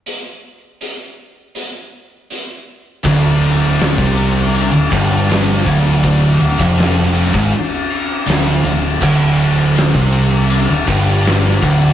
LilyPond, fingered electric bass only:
\new Staff \with { instrumentName = "Fingered electric bass" } { \clef bass \time 4/4 \key d \minor \tempo 4 = 80 r1 | d,,4~ d,,16 c,4 d,,16 g,,4 d,,8~ | d,,8 d,,16 f,,4 gis,,16 r4 d,,8 d,,8 | d,,4~ d,,16 c,4 d,,16 g,,4 d,,8 | }